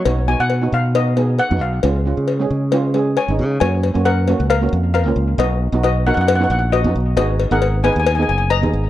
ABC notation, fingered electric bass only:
X:1
M:4/4
L:1/16
Q:"Swing 16ths" 1/4=135
K:F#
V:1 name="Fingered electric bass" clef=bass
B,,,3 B,,3 B,,6- B,, F,, B,,,2 | C,,3 C,3 C,6- C, G,,, C,2 | F,,3 F,,4 C,,3 E,,3 C,, C,,2 | B,,,3 B,,,4 F,,3 A,,,3 F,, B,,,2 |
G,,,3 G,,,4 D,,3 F,,,3 D,, G,,,2 |]